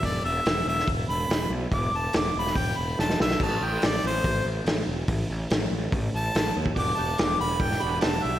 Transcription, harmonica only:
X:1
M:4/4
L:1/8
Q:1/4=143
K:Em
V:1 name="Harmonica"
d e2 e z b2 z | d' a d' b g b a e | a g d c2 z3 | z4 z a2 z |
d' a d' b g b a e |]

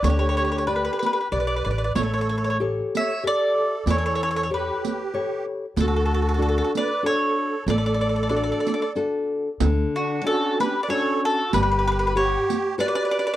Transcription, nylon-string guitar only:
X:1
M:3/4
L:1/8
Q:"Swing" 1/4=94
K:D
V:1 name="Nylon-string guitar"
D,2 [GBd]2 [GBd]2 | A,2 [GAc]2 [GAe]2 | E,2 [GAc]2 [GAc]2 | D,2 [DFA]2 [DFA]2 |
A,2 [DFA]2 [DFA]2 | D,2 [CDF]2 [CDF]2 | G,2 [GBf]2 [FGB]2 |]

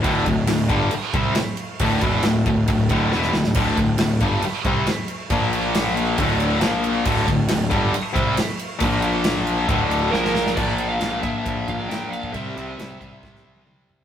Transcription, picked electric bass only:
X:1
M:4/4
L:1/8
Q:1/4=137
K:Dm
V:1 name="Picked electric bass" clef=bass
D,,, D,,, D,,, G,,, z C,, z2 | D,,, E,,, D,,, D,,, D,,, D,,, E,,, D,,, | D,,, D,,, D,,, G,,, z C,, z2 | B,,,4 D,,,2 B,,,2 |
D,,, D,,, D,,, G,,, z C,, z2 | B,,,4 D,,,2 B,,,2 | B,,,2 B,,, B,,, B,,, B,,, B,,,2 | C,, C,, C,, C,, C,, C,, C,, C,, |]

